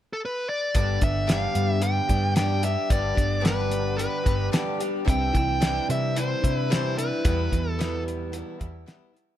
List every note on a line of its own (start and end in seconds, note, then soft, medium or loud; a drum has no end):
0.13 0.20 A4 medium
0.25 0.49 B4 medium
0.49 0.75 D5 medium
0.75 0.97 G1 medium
0.75 1.02 G2 medium
0.75 1.02 D3 medium
0.75 1.01 G3 medium
0.75 1.01 B3 medium
0.75 1.00 D4 medium
0.75 1.00 G4 medium
0.75 1.03 D5 medium
0.75 kick medium
0.75 closed hi-hat medium
1.01 1.46 G1 medium
1.01 2.36 D3 medium
1.01 1.26 G3 soft
1.01 1.27 B3 soft
1.01 1.27 D4 medium
1.01 1.26 G4 soft
1.01 1.30 E5 medium
1.01 kick medium
1.01 closed hi-hat medium
1.27 1.81 G2 medium
1.27 1.81 D3 medium
1.27 1.81 G3 medium
1.27 1.80 B3 medium
1.27 1.81 D4 medium
1.27 1.82 G4 medium
1.27 snare loud
1.27 closed hi-hat medium
1.32 1.71 F5 medium
1.53 1.99 G2 medium
1.53 2.89 B3 medium
1.53 closed hi-hat medium
1.71 1.83 E5 medium
1.81 2.08 G3 medium
1.81 2.08 B3 medium
1.81 2.08 D4 medium
1.81 2.08 G4 medium
1.81 2.33 G5 medium
1.81 closed hi-hat medium
2.09 2.75 G2 medium
2.09 2.35 G3 soft
2.09 2.35 B3 soft
2.09 2.36 D4 soft
2.09 2.35 G4 medium
2.09 kick medium
2.09 closed hi-hat medium
2.35 2.62 G2 medium
2.35 2.63 D3 medium
2.35 2.63 G3 medium
2.35 2.63 B3 medium
2.35 2.62 D4 medium
2.35 2.61 G4 medium
2.35 2.64 G5 medium
2.35 snare medium
2.35 closed hi-hat medium
2.62 2.90 G3 soft
2.62 2.90 B3 soft
2.62 2.90 D4 soft
2.62 2.90 G4 medium
2.62 2.91 E5 medium
2.62 closed hi-hat medium
2.90 3.12 G1 medium
2.90 3.17 G2 medium
2.90 3.17 D3 medium
2.90 3.15 G3 medium
2.90 3.15 B3 medium
2.90 3.14 D4 medium
2.90 3.14 G4 medium
2.90 3.45 D5 medium
2.90 kick loud
2.90 closed hi-hat medium
3.15 4.06 G1 medium
3.15 4.52 D3 medium
3.15 3.40 G3 soft
3.15 3.41 B3 soft
3.15 3.40 D4 soft
3.15 3.41 G4 medium
3.15 kick medium
3.15 closed hi-hat medium
3.40 3.96 G2 medium
3.40 3.97 D3 medium
3.40 3.96 G3 medium
3.40 3.97 B3 medium
3.40 3.98 D4 medium
3.40 3.98 G4 medium
3.45 3.97 B4 medium
3.45 snare loud
3.45 closed hi-hat medium
3.71 5.06 B3 medium
3.71 closed hi-hat medium
3.97 4.25 G3 medium
3.97 4.25 B3 medium
3.97 4.25 D4 medium
3.97 4.24 G4 medium
3.97 4.48 B4 medium
3.97 closed hi-hat medium
4.25 4.48 G1 medium
4.25 4.51 G3 soft
4.25 4.52 B3 soft
4.25 4.52 D4 soft
4.25 4.52 G4 soft
4.25 kick medium
4.25 closed hi-hat medium
4.52 4.79 G2 medium
4.52 4.79 D3 medium
4.52 4.80 G3 medium
4.52 4.80 B3 medium
4.52 4.80 D4 medium
4.52 4.79 G4 medium
4.52 snare loud
4.52 closed hi-hat medium
4.80 5.04 G3 soft
4.80 5.05 B3 soft
4.80 5.05 D4 medium
4.80 5.06 G4 medium
4.80 closed hi-hat medium
5.05 5.30 C2 loud
5.05 5.33 C3 medium
5.05 5.33 E3 medium
5.05 5.33 G3 medium
5.05 5.32 D4 medium
5.05 5.31 E4 medium
5.05 kick loud
5.05 closed hi-hat medium
5.10 5.36 G5 loud
5.33 5.79 C2 medium
5.33 5.60 E3 medium
5.33 5.60 G3 soft
5.33 5.60 D4 soft
5.33 5.60 E4 medium
5.33 kick medium
5.33 closed hi-hat medium
5.37 5.86 G5 loud
5.60 6.15 C3 medium
5.60 6.14 E3 medium
5.60 6.15 G3 medium
5.60 6.15 D4 medium
5.60 6.16 E4 medium
5.60 snare loud
5.60 closed hi-hat medium
5.88 6.34 C3 medium
5.88 8.03 G3 medium
5.88 6.18 E5 medium
5.88 closed hi-hat medium
6.15 6.42 E3 soft
6.15 6.42 G3 medium
6.15 6.41 D4 medium
6.15 6.40 E4 medium
6.15 6.57 C5 medium
6.15 closed hi-hat medium
6.41 7.11 C3 medium
6.41 6.69 G3 soft
6.41 6.70 D4 soft
6.41 6.69 E4 soft
6.41 kick medium
6.41 closed hi-hat medium
6.57 6.71 B4 medium
6.70 6.97 C3 medium
6.70 6.98 E3 medium
6.70 6.97 G3 medium
6.70 6.97 D4 medium
6.70 6.95 E4 medium
6.70 6.97 C5 medium
6.70 snare loud
6.70 closed hi-hat medium
6.96 7.25 G3 soft
6.96 7.25 D4 soft
6.96 7.24 E4 soft
6.96 7.71 B4 medium
6.96 closed hi-hat medium
7.25 7.52 E2 medium
7.25 7.48 E2 medium
7.25 7.53 B2 medium
7.25 7.52 E3 medium
7.25 7.51 G3 medium
7.25 7.51 B3 medium
7.25 7.49 E4 medium
7.25 kick loud
7.25 closed hi-hat medium
7.51 8.41 E2 medium
7.51 8.88 B2 medium
7.51 7.78 E3 soft
7.51 7.78 G3 soft
7.51 7.79 B3 soft
7.51 7.79 E4 medium
7.51 kick medium
7.51 closed hi-hat medium
7.71 8.03 A4 medium
7.79 8.34 E2 medium
7.79 8.34 B2 medium
7.79 8.31 E3 medium
7.79 8.32 G3 medium
7.79 8.32 B3 medium
7.79 8.33 E4 loud
7.79 snare loud
7.79 closed hi-hat medium
8.04 9.37 G3 medium
8.08 closed hi-hat medium
8.32 8.60 E3 medium
8.32 8.61 G3 medium
8.32 8.59 B3 medium
8.32 8.58 E4 medium
8.32 closed hi-hat medium
8.60 8.84 E2 medium
8.60 8.86 E3 soft
8.60 8.86 G3 medium
8.60 8.86 B3 medium
8.60 8.86 E4 medium
8.60 kick medium
8.60 closed hi-hat medium
8.86 9.14 E2 medium
8.86 9.15 B2 medium
8.86 9.15 E3 medium
8.86 9.14 G3 medium
8.86 9.13 B3 medium
8.86 9.12 E4 medium
8.86 snare loud
8.86 closed hi-hat medium
9.13 9.37 E3 soft
9.13 9.37 G3 medium
9.13 9.37 B3 medium
9.13 9.37 E4 medium
9.13 closed hi-hat soft